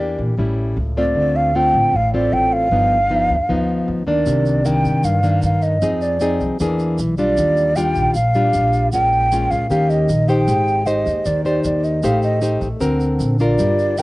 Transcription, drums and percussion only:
0, 0, Header, 1, 2, 480
1, 0, Start_track
1, 0, Tempo, 388601
1, 1432, Time_signature, 4, 2, 24, 8
1, 17319, End_track
2, 0, Start_track
2, 0, Title_t, "Drums"
2, 5263, Note_on_c, 9, 82, 65
2, 5386, Note_off_c, 9, 82, 0
2, 5503, Note_on_c, 9, 82, 27
2, 5627, Note_off_c, 9, 82, 0
2, 5746, Note_on_c, 9, 82, 65
2, 5870, Note_off_c, 9, 82, 0
2, 5987, Note_on_c, 9, 82, 25
2, 6110, Note_off_c, 9, 82, 0
2, 6223, Note_on_c, 9, 82, 68
2, 6347, Note_off_c, 9, 82, 0
2, 6464, Note_on_c, 9, 82, 27
2, 6587, Note_off_c, 9, 82, 0
2, 6699, Note_on_c, 9, 82, 61
2, 6822, Note_off_c, 9, 82, 0
2, 6940, Note_on_c, 9, 82, 28
2, 7063, Note_off_c, 9, 82, 0
2, 7188, Note_on_c, 9, 82, 63
2, 7311, Note_off_c, 9, 82, 0
2, 7428, Note_on_c, 9, 82, 24
2, 7551, Note_off_c, 9, 82, 0
2, 7661, Note_on_c, 9, 82, 65
2, 7784, Note_off_c, 9, 82, 0
2, 7906, Note_on_c, 9, 82, 26
2, 8030, Note_off_c, 9, 82, 0
2, 8147, Note_on_c, 9, 82, 68
2, 8270, Note_off_c, 9, 82, 0
2, 8387, Note_on_c, 9, 82, 25
2, 8511, Note_off_c, 9, 82, 0
2, 8625, Note_on_c, 9, 82, 64
2, 8749, Note_off_c, 9, 82, 0
2, 8865, Note_on_c, 9, 82, 26
2, 8988, Note_off_c, 9, 82, 0
2, 9106, Note_on_c, 9, 82, 67
2, 9230, Note_off_c, 9, 82, 0
2, 9348, Note_on_c, 9, 82, 25
2, 9471, Note_off_c, 9, 82, 0
2, 9586, Note_on_c, 9, 82, 68
2, 9710, Note_off_c, 9, 82, 0
2, 9822, Note_on_c, 9, 82, 24
2, 9945, Note_off_c, 9, 82, 0
2, 10062, Note_on_c, 9, 82, 64
2, 10185, Note_off_c, 9, 82, 0
2, 10304, Note_on_c, 9, 82, 26
2, 10427, Note_off_c, 9, 82, 0
2, 10542, Note_on_c, 9, 82, 60
2, 10665, Note_off_c, 9, 82, 0
2, 10785, Note_on_c, 9, 82, 28
2, 10909, Note_off_c, 9, 82, 0
2, 11024, Note_on_c, 9, 82, 65
2, 11148, Note_off_c, 9, 82, 0
2, 11267, Note_on_c, 9, 82, 25
2, 11391, Note_off_c, 9, 82, 0
2, 11511, Note_on_c, 9, 82, 69
2, 11634, Note_off_c, 9, 82, 0
2, 11750, Note_on_c, 9, 82, 27
2, 11874, Note_off_c, 9, 82, 0
2, 11989, Note_on_c, 9, 82, 61
2, 12113, Note_off_c, 9, 82, 0
2, 12230, Note_on_c, 9, 82, 26
2, 12354, Note_off_c, 9, 82, 0
2, 12462, Note_on_c, 9, 82, 66
2, 12586, Note_off_c, 9, 82, 0
2, 12701, Note_on_c, 9, 82, 29
2, 12825, Note_off_c, 9, 82, 0
2, 12943, Note_on_c, 9, 82, 64
2, 13067, Note_off_c, 9, 82, 0
2, 13186, Note_on_c, 9, 82, 25
2, 13309, Note_off_c, 9, 82, 0
2, 13421, Note_on_c, 9, 82, 65
2, 13544, Note_off_c, 9, 82, 0
2, 13664, Note_on_c, 9, 82, 26
2, 13788, Note_off_c, 9, 82, 0
2, 13900, Note_on_c, 9, 82, 65
2, 14023, Note_off_c, 9, 82, 0
2, 14146, Note_on_c, 9, 82, 27
2, 14270, Note_off_c, 9, 82, 0
2, 14379, Note_on_c, 9, 82, 65
2, 14503, Note_off_c, 9, 82, 0
2, 14622, Note_on_c, 9, 82, 28
2, 14746, Note_off_c, 9, 82, 0
2, 14860, Note_on_c, 9, 82, 66
2, 14984, Note_off_c, 9, 82, 0
2, 15100, Note_on_c, 9, 82, 25
2, 15223, Note_off_c, 9, 82, 0
2, 15338, Note_on_c, 9, 82, 62
2, 15461, Note_off_c, 9, 82, 0
2, 15579, Note_on_c, 9, 82, 26
2, 15703, Note_off_c, 9, 82, 0
2, 15822, Note_on_c, 9, 82, 66
2, 15945, Note_off_c, 9, 82, 0
2, 16061, Note_on_c, 9, 82, 26
2, 16184, Note_off_c, 9, 82, 0
2, 16303, Note_on_c, 9, 82, 65
2, 16426, Note_off_c, 9, 82, 0
2, 16541, Note_on_c, 9, 82, 29
2, 16665, Note_off_c, 9, 82, 0
2, 16782, Note_on_c, 9, 82, 63
2, 16905, Note_off_c, 9, 82, 0
2, 17031, Note_on_c, 9, 82, 24
2, 17155, Note_off_c, 9, 82, 0
2, 17264, Note_on_c, 9, 82, 67
2, 17319, Note_off_c, 9, 82, 0
2, 17319, End_track
0, 0, End_of_file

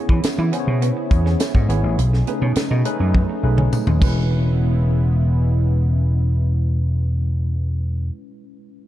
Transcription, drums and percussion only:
0, 0, Header, 1, 2, 480
1, 0, Start_track
1, 0, Key_signature, 4, "major"
1, 0, Tempo, 581395
1, 1634, Time_signature, 4, 2, 24, 8
1, 7326, End_track
2, 0, Start_track
2, 0, Title_t, "Drums"
2, 75, Note_on_c, 9, 36, 99
2, 158, Note_off_c, 9, 36, 0
2, 193, Note_on_c, 9, 42, 101
2, 196, Note_on_c, 9, 54, 72
2, 204, Note_on_c, 9, 38, 118
2, 276, Note_off_c, 9, 42, 0
2, 278, Note_off_c, 9, 54, 0
2, 286, Note_off_c, 9, 38, 0
2, 435, Note_on_c, 9, 42, 86
2, 518, Note_off_c, 9, 42, 0
2, 678, Note_on_c, 9, 42, 96
2, 760, Note_off_c, 9, 42, 0
2, 914, Note_on_c, 9, 42, 67
2, 916, Note_on_c, 9, 36, 92
2, 997, Note_off_c, 9, 42, 0
2, 999, Note_off_c, 9, 36, 0
2, 1040, Note_on_c, 9, 38, 37
2, 1123, Note_off_c, 9, 38, 0
2, 1155, Note_on_c, 9, 42, 103
2, 1155, Note_on_c, 9, 54, 91
2, 1160, Note_on_c, 9, 38, 105
2, 1237, Note_off_c, 9, 42, 0
2, 1238, Note_off_c, 9, 54, 0
2, 1243, Note_off_c, 9, 38, 0
2, 1277, Note_on_c, 9, 36, 89
2, 1360, Note_off_c, 9, 36, 0
2, 1400, Note_on_c, 9, 42, 83
2, 1482, Note_off_c, 9, 42, 0
2, 1640, Note_on_c, 9, 42, 95
2, 1722, Note_off_c, 9, 42, 0
2, 1762, Note_on_c, 9, 38, 34
2, 1845, Note_off_c, 9, 38, 0
2, 1875, Note_on_c, 9, 42, 68
2, 1957, Note_off_c, 9, 42, 0
2, 2109, Note_on_c, 9, 42, 96
2, 2114, Note_on_c, 9, 54, 75
2, 2120, Note_on_c, 9, 38, 110
2, 2192, Note_off_c, 9, 42, 0
2, 2197, Note_off_c, 9, 54, 0
2, 2202, Note_off_c, 9, 38, 0
2, 2354, Note_on_c, 9, 42, 82
2, 2437, Note_off_c, 9, 42, 0
2, 2596, Note_on_c, 9, 48, 58
2, 2597, Note_on_c, 9, 36, 92
2, 2678, Note_off_c, 9, 48, 0
2, 2679, Note_off_c, 9, 36, 0
2, 2955, Note_on_c, 9, 47, 69
2, 3038, Note_off_c, 9, 47, 0
2, 3077, Note_on_c, 9, 45, 77
2, 3077, Note_on_c, 9, 54, 82
2, 3159, Note_off_c, 9, 54, 0
2, 3160, Note_off_c, 9, 45, 0
2, 3196, Note_on_c, 9, 45, 76
2, 3278, Note_off_c, 9, 45, 0
2, 3316, Note_on_c, 9, 36, 115
2, 3316, Note_on_c, 9, 54, 73
2, 3317, Note_on_c, 9, 49, 92
2, 3399, Note_off_c, 9, 36, 0
2, 3399, Note_off_c, 9, 49, 0
2, 3399, Note_off_c, 9, 54, 0
2, 7326, End_track
0, 0, End_of_file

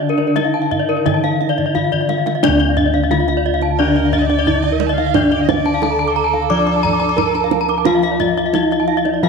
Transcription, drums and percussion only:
0, 0, Header, 1, 2, 480
1, 0, Start_track
1, 0, Tempo, 699301
1, 1200, Tempo, 680272
1, 1682, Time_signature, 4, 2, 24, 8
1, 6520, End_track
2, 0, Start_track
2, 0, Title_t, "Kendang"
2, 124, Note_on_c, 9, 62, 22
2, 193, Note_off_c, 9, 62, 0
2, 249, Note_on_c, 9, 62, 19
2, 249, Note_on_c, 9, 63, 50
2, 317, Note_off_c, 9, 62, 0
2, 317, Note_off_c, 9, 63, 0
2, 491, Note_on_c, 9, 64, 51
2, 559, Note_off_c, 9, 64, 0
2, 729, Note_on_c, 9, 62, 18
2, 729, Note_on_c, 9, 64, 61
2, 797, Note_off_c, 9, 62, 0
2, 797, Note_off_c, 9, 64, 0
2, 851, Note_on_c, 9, 62, 21
2, 920, Note_off_c, 9, 62, 0
2, 971, Note_on_c, 9, 62, 22
2, 1040, Note_off_c, 9, 62, 0
2, 1086, Note_on_c, 9, 64, 39
2, 1154, Note_off_c, 9, 64, 0
2, 1208, Note_on_c, 9, 64, 41
2, 1278, Note_off_c, 9, 64, 0
2, 1327, Note_on_c, 9, 64, 44
2, 1397, Note_off_c, 9, 64, 0
2, 1441, Note_on_c, 9, 63, 42
2, 1512, Note_off_c, 9, 63, 0
2, 1566, Note_on_c, 9, 63, 51
2, 1637, Note_off_c, 9, 63, 0
2, 1685, Note_on_c, 9, 63, 53
2, 1685, Note_on_c, 9, 64, 64
2, 1756, Note_off_c, 9, 63, 0
2, 1756, Note_off_c, 9, 64, 0
2, 1801, Note_on_c, 9, 62, 23
2, 1871, Note_off_c, 9, 62, 0
2, 1919, Note_on_c, 9, 64, 56
2, 1990, Note_off_c, 9, 64, 0
2, 2039, Note_on_c, 9, 62, 20
2, 2109, Note_off_c, 9, 62, 0
2, 2162, Note_on_c, 9, 63, 51
2, 2233, Note_off_c, 9, 63, 0
2, 2281, Note_on_c, 9, 62, 20
2, 2351, Note_off_c, 9, 62, 0
2, 2518, Note_on_c, 9, 62, 25
2, 2588, Note_off_c, 9, 62, 0
2, 2756, Note_on_c, 9, 62, 19
2, 2827, Note_off_c, 9, 62, 0
2, 2877, Note_on_c, 9, 64, 47
2, 2948, Note_off_c, 9, 64, 0
2, 2997, Note_on_c, 9, 62, 18
2, 3068, Note_off_c, 9, 62, 0
2, 3114, Note_on_c, 9, 64, 55
2, 3185, Note_off_c, 9, 64, 0
2, 3235, Note_on_c, 9, 62, 22
2, 3306, Note_off_c, 9, 62, 0
2, 3353, Note_on_c, 9, 63, 56
2, 3423, Note_off_c, 9, 63, 0
2, 3480, Note_on_c, 9, 62, 21
2, 3550, Note_off_c, 9, 62, 0
2, 3596, Note_on_c, 9, 63, 39
2, 3596, Note_on_c, 9, 64, 68
2, 3666, Note_off_c, 9, 63, 0
2, 3666, Note_off_c, 9, 64, 0
2, 3718, Note_on_c, 9, 62, 21
2, 3789, Note_off_c, 9, 62, 0
2, 3837, Note_on_c, 9, 63, 53
2, 3837, Note_on_c, 9, 64, 57
2, 3908, Note_off_c, 9, 63, 0
2, 3908, Note_off_c, 9, 64, 0
2, 3955, Note_on_c, 9, 62, 23
2, 4026, Note_off_c, 9, 62, 0
2, 4072, Note_on_c, 9, 63, 51
2, 4142, Note_off_c, 9, 63, 0
2, 4438, Note_on_c, 9, 62, 19
2, 4508, Note_off_c, 9, 62, 0
2, 4675, Note_on_c, 9, 62, 16
2, 4745, Note_off_c, 9, 62, 0
2, 4798, Note_on_c, 9, 64, 54
2, 4868, Note_off_c, 9, 64, 0
2, 4916, Note_on_c, 9, 62, 19
2, 4987, Note_off_c, 9, 62, 0
2, 5030, Note_on_c, 9, 63, 41
2, 5030, Note_on_c, 9, 64, 48
2, 5101, Note_off_c, 9, 63, 0
2, 5101, Note_off_c, 9, 64, 0
2, 5152, Note_on_c, 9, 62, 20
2, 5223, Note_off_c, 9, 62, 0
2, 5268, Note_on_c, 9, 63, 38
2, 5338, Note_off_c, 9, 63, 0
2, 5389, Note_on_c, 9, 62, 20
2, 5460, Note_off_c, 9, 62, 0
2, 5509, Note_on_c, 9, 63, 46
2, 5509, Note_on_c, 9, 64, 58
2, 5579, Note_off_c, 9, 63, 0
2, 5579, Note_off_c, 9, 64, 0
2, 5630, Note_on_c, 9, 62, 23
2, 5701, Note_off_c, 9, 62, 0
2, 5751, Note_on_c, 9, 63, 46
2, 5751, Note_on_c, 9, 64, 46
2, 5821, Note_off_c, 9, 63, 0
2, 5821, Note_off_c, 9, 64, 0
2, 5875, Note_on_c, 9, 62, 21
2, 5946, Note_off_c, 9, 62, 0
2, 5990, Note_on_c, 9, 63, 50
2, 6060, Note_off_c, 9, 63, 0
2, 6115, Note_on_c, 9, 62, 19
2, 6185, Note_off_c, 9, 62, 0
2, 6354, Note_on_c, 9, 62, 22
2, 6425, Note_off_c, 9, 62, 0
2, 6520, End_track
0, 0, End_of_file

